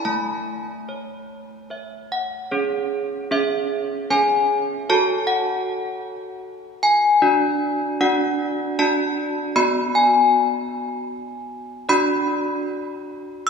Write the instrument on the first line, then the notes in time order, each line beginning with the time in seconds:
handbells
0.05 A3 A5
0.89 C#5
1.70 C#5 E5
2.12 F#5
2.52 C#4 G#4 C#5
3.31 C#4 G#4 C#5 E5
4.10 C#4 G#4 C#5 G#5
4.90 F#4 A4 C#5 A5
5.27 F#5
6.83 G#5
7.22 D4 F#4 D5
8.01 D4 F#4 D5 F#5
8.79 D4 F#4 D5 A5
9.56 B3 F#4 D5 B5
9.95 G#5
11.89 D4 F#4 D5 B5
13.47 E6